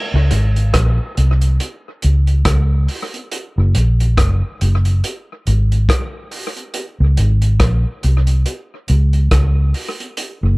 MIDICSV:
0, 0, Header, 1, 3, 480
1, 0, Start_track
1, 0, Tempo, 858369
1, 1853, Time_signature, 4, 2, 24, 8
1, 5916, End_track
2, 0, Start_track
2, 0, Title_t, "Fingered electric bass"
2, 0, Program_c, 0, 33
2, 77, Note_on_c, 0, 37, 102
2, 169, Note_off_c, 0, 37, 0
2, 175, Note_on_c, 0, 32, 85
2, 399, Note_off_c, 0, 32, 0
2, 418, Note_on_c, 0, 34, 86
2, 548, Note_off_c, 0, 34, 0
2, 658, Note_on_c, 0, 36, 86
2, 881, Note_off_c, 0, 36, 0
2, 1143, Note_on_c, 0, 37, 86
2, 1364, Note_off_c, 0, 37, 0
2, 1378, Note_on_c, 0, 37, 96
2, 1601, Note_off_c, 0, 37, 0
2, 2001, Note_on_c, 0, 30, 96
2, 2091, Note_off_c, 0, 30, 0
2, 2102, Note_on_c, 0, 34, 85
2, 2323, Note_off_c, 0, 34, 0
2, 2339, Note_on_c, 0, 30, 87
2, 2468, Note_off_c, 0, 30, 0
2, 2581, Note_on_c, 0, 30, 83
2, 2803, Note_off_c, 0, 30, 0
2, 3060, Note_on_c, 0, 32, 89
2, 3282, Note_off_c, 0, 32, 0
2, 3916, Note_on_c, 0, 37, 102
2, 4008, Note_off_c, 0, 37, 0
2, 4016, Note_on_c, 0, 32, 87
2, 4239, Note_off_c, 0, 32, 0
2, 4253, Note_on_c, 0, 34, 90
2, 4384, Note_off_c, 0, 34, 0
2, 4497, Note_on_c, 0, 36, 85
2, 4719, Note_off_c, 0, 36, 0
2, 4975, Note_on_c, 0, 37, 86
2, 5198, Note_off_c, 0, 37, 0
2, 5212, Note_on_c, 0, 37, 98
2, 5436, Note_off_c, 0, 37, 0
2, 5832, Note_on_c, 0, 30, 106
2, 5916, Note_off_c, 0, 30, 0
2, 5916, End_track
3, 0, Start_track
3, 0, Title_t, "Drums"
3, 172, Note_on_c, 9, 42, 82
3, 228, Note_off_c, 9, 42, 0
3, 315, Note_on_c, 9, 42, 54
3, 371, Note_off_c, 9, 42, 0
3, 412, Note_on_c, 9, 37, 98
3, 413, Note_on_c, 9, 36, 98
3, 413, Note_on_c, 9, 42, 84
3, 468, Note_off_c, 9, 37, 0
3, 469, Note_off_c, 9, 36, 0
3, 469, Note_off_c, 9, 42, 0
3, 656, Note_on_c, 9, 42, 70
3, 712, Note_off_c, 9, 42, 0
3, 791, Note_on_c, 9, 42, 54
3, 847, Note_off_c, 9, 42, 0
3, 895, Note_on_c, 9, 42, 77
3, 951, Note_off_c, 9, 42, 0
3, 1131, Note_on_c, 9, 42, 69
3, 1187, Note_off_c, 9, 42, 0
3, 1271, Note_on_c, 9, 42, 46
3, 1327, Note_off_c, 9, 42, 0
3, 1370, Note_on_c, 9, 42, 92
3, 1371, Note_on_c, 9, 37, 115
3, 1372, Note_on_c, 9, 36, 105
3, 1426, Note_off_c, 9, 42, 0
3, 1427, Note_off_c, 9, 37, 0
3, 1428, Note_off_c, 9, 36, 0
3, 1613, Note_on_c, 9, 46, 74
3, 1669, Note_off_c, 9, 46, 0
3, 1755, Note_on_c, 9, 42, 44
3, 1811, Note_off_c, 9, 42, 0
3, 1854, Note_on_c, 9, 42, 88
3, 1910, Note_off_c, 9, 42, 0
3, 2096, Note_on_c, 9, 42, 83
3, 2152, Note_off_c, 9, 42, 0
3, 2238, Note_on_c, 9, 42, 55
3, 2294, Note_off_c, 9, 42, 0
3, 2334, Note_on_c, 9, 36, 102
3, 2336, Note_on_c, 9, 37, 103
3, 2337, Note_on_c, 9, 42, 79
3, 2390, Note_off_c, 9, 36, 0
3, 2392, Note_off_c, 9, 37, 0
3, 2393, Note_off_c, 9, 42, 0
3, 2578, Note_on_c, 9, 42, 72
3, 2634, Note_off_c, 9, 42, 0
3, 2713, Note_on_c, 9, 42, 52
3, 2768, Note_off_c, 9, 42, 0
3, 2818, Note_on_c, 9, 42, 76
3, 2873, Note_off_c, 9, 42, 0
3, 3057, Note_on_c, 9, 42, 68
3, 3113, Note_off_c, 9, 42, 0
3, 3197, Note_on_c, 9, 42, 44
3, 3253, Note_off_c, 9, 42, 0
3, 3293, Note_on_c, 9, 36, 103
3, 3297, Note_on_c, 9, 42, 91
3, 3298, Note_on_c, 9, 37, 117
3, 3348, Note_off_c, 9, 36, 0
3, 3353, Note_off_c, 9, 42, 0
3, 3354, Note_off_c, 9, 37, 0
3, 3531, Note_on_c, 9, 46, 81
3, 3587, Note_off_c, 9, 46, 0
3, 3671, Note_on_c, 9, 42, 48
3, 3727, Note_off_c, 9, 42, 0
3, 3767, Note_on_c, 9, 42, 88
3, 3823, Note_off_c, 9, 42, 0
3, 4011, Note_on_c, 9, 42, 81
3, 4067, Note_off_c, 9, 42, 0
3, 4148, Note_on_c, 9, 42, 53
3, 4204, Note_off_c, 9, 42, 0
3, 4248, Note_on_c, 9, 37, 90
3, 4249, Note_on_c, 9, 42, 77
3, 4250, Note_on_c, 9, 36, 99
3, 4304, Note_off_c, 9, 37, 0
3, 4305, Note_off_c, 9, 42, 0
3, 4306, Note_off_c, 9, 36, 0
3, 4491, Note_on_c, 9, 42, 70
3, 4547, Note_off_c, 9, 42, 0
3, 4624, Note_on_c, 9, 42, 56
3, 4680, Note_off_c, 9, 42, 0
3, 4729, Note_on_c, 9, 42, 77
3, 4785, Note_off_c, 9, 42, 0
3, 4966, Note_on_c, 9, 42, 67
3, 5022, Note_off_c, 9, 42, 0
3, 5106, Note_on_c, 9, 42, 45
3, 5162, Note_off_c, 9, 42, 0
3, 5208, Note_on_c, 9, 36, 105
3, 5208, Note_on_c, 9, 42, 90
3, 5209, Note_on_c, 9, 37, 122
3, 5263, Note_off_c, 9, 42, 0
3, 5264, Note_off_c, 9, 36, 0
3, 5265, Note_off_c, 9, 37, 0
3, 5448, Note_on_c, 9, 46, 72
3, 5504, Note_off_c, 9, 46, 0
3, 5593, Note_on_c, 9, 42, 47
3, 5649, Note_off_c, 9, 42, 0
3, 5687, Note_on_c, 9, 42, 89
3, 5743, Note_off_c, 9, 42, 0
3, 5916, End_track
0, 0, End_of_file